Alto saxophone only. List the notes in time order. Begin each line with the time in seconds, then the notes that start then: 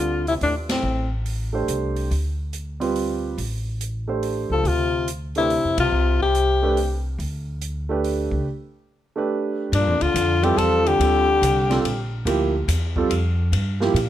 Already playing: F4
0.28 E4
0.43 D4
0.71 C4
4.52 A4
4.68 F4
5.38 E4
5.80 F4
6.22 G4
9.74 D4
10.02 F4
10.44 G4
10.58 A4
10.88 G4